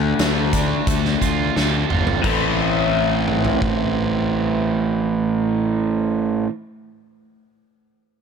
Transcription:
Already playing: fingered electric bass D2, distorted electric guitar D3 A3 A4, overdriven electric guitar A3 D4
0.19 fingered electric bass D2, distorted electric guitar A3, snare, closed hi-hat
0.53 distorted electric guitar D4, kick, closed hi-hat
0.87 fingered electric bass D2, distorted electric guitar A4, kick, closed hi-hat
1.05 snare
1.20 fingered electric bass D2, distorted electric guitar F4, kick, closed hi-hat
1.56 fingered electric bass D2, distorted electric guitar A4, snare
1.89 fingered electric bass G1, distorted electric guitar F4, mid tom
2.07 floor tom
2.22 fingered electric bass A1, distorted electric guitar A2 E3 A3 C4 E4, kick, crash
2.26 distorted electric guitar A4
3.28 mid tom
3.45 floor tom
3.62 kick

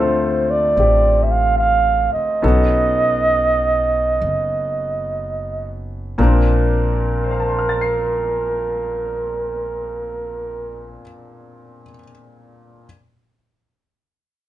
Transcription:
Already playing: upright bass D2, grand piano D3 A3 C4
0.00 grand piano F4 A4, flugelhorn C5
0.51 flugelhorn D5
0.76 upright bass A1, grand piano C4 G4
1.23 flugelhorn E5
1.31 flugelhorn F5
1.58 flugelhorn F5
2.13 flugelhorn D#5, muted upright bass stroke
2.42 upright bass B1, grand piano B3 C#4 D#4 F#4 A4
4.22 upright bass F#1
6.18 upright bass A#1, grand piano A#2 A#3 C4 D4 A#4
6.24 flugelhorn A#4
7.24 grand piano C5
7.31 grand piano F5
7.40 grand piano A5
7.49 grand piano C6
7.58 grand piano F6
7.69 grand piano A6
7.81 grand piano C7

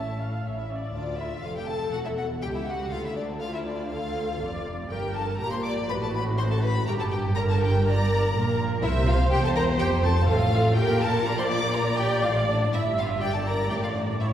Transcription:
Already playing: double bass section A1, cello section A3, viola section E5, violin section A5
0.04 violin section E4 E5
0.17 violin section C#4 C#5, viola section F5
0.30 violin section E4 E5
0.42 double bass section A1, violin section C#4 C#5, viola section E5
0.56 violin section E4 E5
0.69 violin section C#4 C#5, viola section D5
0.81 violin section E4 E5
0.93 cello section D2, double bass section D2, violin section D4 D5, viola section F4
1.19 violin section E4 E5
1.43 double bass section F1, cello section F2, violin section F4 F5, viola section A4
1.55 violin section G4 G5
1.68 violin section A4 A5
1.92 double bass section E1, cello section E2, violin section F#4 F#5
2.05 violin section E4 E5
2.17 violin section F#4 F#5
2.42 double bass section C#2, cello section C#2, violin section G4 G5, viola section G4
2.54 violin section E4 E5
2.67 violin section F#4 F#5
2.91 double bass section D2, cello section D2, violin section F4 F5, viola section A4
3.04 violin section E4 E5
3.16 violin section D4 D5
3.40 viola section F4, violin section F4 F5
3.53 violin section E4 E5
3.66 violin section D4 D5
3.90 violin section F4 F5, viola section A4
4.39 double bass section F1, cello section F2, viola section D5
4.89 double bass section G1, cello section G2, violin section G4 G5, viola section A#4
5.14 violin section A4 A5
5.38 double bass section A#1, cello section A#2, viola section G4, violin section A#4 A#5
5.51 violin section C5 C6
5.64 violin section D5 D6
5.89 double bass section A1, cello section A2, viola section F#4, violin section B4 B5
6.02 violin section A4 A5
6.14 violin section B4 B5
6.38 violin section C5 C6
6.51 violin section A4 A5
6.63 violin section B4 B5
6.87 double bass section G1, cello section G2, viola section G4, violin section A#4 A#5
7.00 violin section A4 A5
7.11 violin section G4 G5
7.35 violin section A#4 A#5, viola section A#4
7.48 violin section A4 A5
7.60 violin section G4 G5
7.85 violin section A#4 A#5, viola section D5
8.33 double bass section A#1, cello section A#2, viola section A#4
8.82 double bass section C2, cello section C3, violin section E4 E5, viola section C5
9.06 violin section F4 F5
9.30 double bass section E1, cello section E2, violin section G4 G5
9.43 violin section A4 A5
9.55 violin section A#4 A#5
9.79 double bass section F1, cello section F2, violin section G4 G5
10.03 violin section A4 A5
10.28 double bass section A1, cello section A2, violin section F4 F5, viola section A4
10.77 double bass section A#1, cello section A#2, violin section G4 G5, viola section A#4
11.02 violin section A4 A5
11.26 violin section A#4 A#5, viola section D5
11.39 violin section C5 C6
11.50 violin section D5 D6
11.75 violin section A#4 A#5
11.98 violin section G4 G5
12.23 double bass section A1, cello section A2, violin section F4 F5
12.49 violin section D4 D5
12.72 double bass section G1, cello section G2, violin section E4 E5, viola section E5
12.97 violin section F4 F5
13.22 violin section G4 G5, viola section D5
13.34 violin section A4 A5
13.46 violin section A#4 A#5
13.70 double bass section A1, cello section A2, violin section G4 G5
13.83 violin section F4 F5
13.94 violin section D4 D5
14.20 double bass section A1, cello section A2, violin section E4 E5, viola section C#5

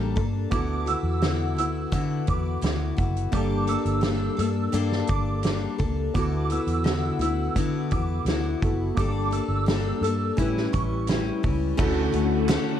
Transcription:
Already playing: fingered electric bass A1, steel-string acoustic guitar G3 A#3 D4 A4, synth keys A#3 D4 G4 A4
0.16 fingered electric bass G2, steel-string acoustic guitar A#3 D4 A4, kick, closed hi-hat
0.50 fingered electric bass D2, steel-string acoustic guitar D3 B3 E4 F#4, synth keys B3 E4 F#4, synth bell D6, kick, closed hi-hat
0.55 synth keys A4
0.86 steel-string acoustic guitar B3 E4 F#4, synth bell E6, closed hi-hat
1.03 fingered electric bass E2
1.22 steel-string acoustic guitar D3 B3 E4 F#4, snare, closed hi-hat
1.56 fingered electric bass D2, steel-string acoustic guitar B3 E4 F#4, synth bell E6, closed hi-hat
1.92 steel-string acoustic guitar D3 B3 E4 F#4, fingered electric bass D3, kick, closed hi-hat
2.27 fingered electric bass E2, steel-string acoustic guitar B3 E4 F#4, synth bell D6, kick, closed hi-hat
2.61 fingered electric bass D2, steel-string acoustic guitar D3 B3 E4 F#4, snare, closed hi-hat
2.97 fingered electric bass F#1, steel-string acoustic guitar B3 E4 F#4, kick, closed hi-hat
3.16 closed hi-hat
3.31 fingered electric bass G1, steel-string acoustic guitar G3 A#3 D4 A4, synth keys A#3 D4 G4, synth bell D6, kick, closed hi-hat
3.37 synth keys A4
3.67 steel-string acoustic guitar A#3 D4 A4, synth bell E6, closed hi-hat
3.85 fingered electric bass G1, closed hi-hat
4.01 steel-string acoustic guitar G3 A#3 D4 A4, snare, closed hi-hat
4.37 fingered electric bass G2, steel-string acoustic guitar A#3 D4 A4, synth bell E6, closed hi-hat
4.72 fingered electric bass G2, steel-string acoustic guitar G3 A#3 D4 A4, closed hi-hat
4.92 snare
5.07 fingered electric bass G1, steel-string acoustic guitar D4 A4, synth bell D6, kick, closed hi-hat
5.12 steel-string acoustic guitar A#3
5.43 steel-string acoustic guitar G3 A#3 D4 A4, snare, closed hi-hat
5.78 fingered electric bass C#2, steel-string acoustic guitar A#3 D4 A4, kick, closed hi-hat
6.14 fingered electric bass D2, steel-string acoustic guitar D3 B3 E4 F#4, synth keys B3 E4 F#4, synth bell D6, kick, closed hi-hat
6.19 synth keys A4
6.50 steel-string acoustic guitar B3 E4 F#4, synth bell E6, closed hi-hat
6.67 fingered electric bass E2, closed hi-hat
6.84 steel-string acoustic guitar D3 B3 E4 F#4, snare, closed hi-hat
7.19 fingered electric bass D2, steel-string acoustic guitar B3 E4 F#4, synth bell E6, closed hi-hat
7.56 fingered electric bass D3, steel-string acoustic guitar D3 B3 E4 F#4, kick, closed hi-hat
7.91 fingered electric bass E2, steel-string acoustic guitar B3 E4 F#4, synth bell D6, kick, closed hi-hat
8.25 fingered electric bass D2, steel-string acoustic guitar D3 B3 E4, snare, closed hi-hat
8.30 steel-string acoustic guitar F#4
8.62 fingered electric bass F#1, synth keys B3 E4 F#4 A4, steel-string acoustic guitar E4 F#4, kick, closed hi-hat
8.66 steel-string acoustic guitar B3
8.95 fingered electric bass G1, steel-string acoustic guitar G3 A#3, synth keys A#3 D4 G4, synth bell D6, kick, closed hi-hat
8.99 steel-string acoustic guitar D4 A4, synth keys A4
9.31 steel-string acoustic guitar D4 A4, synth bell E6, closed hi-hat
9.35 steel-string acoustic guitar A#3
9.48 fingered electric bass G1
9.66 steel-string acoustic guitar G3 A#3 D4 A4, snare, closed hi-hat
10.01 fingered electric bass G2, steel-string acoustic guitar D4 A4, synth bell E6, closed hi-hat
10.06 steel-string acoustic guitar A#3
10.37 steel-string acoustic guitar A2 G3 C#4 E4, fingered electric bass A2, synth keys C#4 E4 G4, kick, closed hi-hat
10.41 synth keys B4
10.57 snare
10.72 fingered electric bass A1, steel-string acoustic guitar G3 C#4 E4, synth bell C#6, kick, closed hi-hat
11.07 steel-string acoustic guitar A2 G3 C#4 E4, snare, closed hi-hat
11.43 fingered electric bass C#2, steel-string acoustic guitar G3 C#4 E4, kick, open hi-hat
11.77 fingered electric bass D2, steel-string acoustic guitar D3 A3 C#4 F#4, string machine D3 A3 F#4, synth keys C#4 E4 F#4, kick, crash
11.81 string machine C#4, synth keys A4
12.12 fingered electric bass D2, steel-string acoustic guitar A3 C#4 F#4, closed hi-hat
12.49 steel-string acoustic guitar D3 A3 C#4 F#4, snare, clap, closed hi-hat

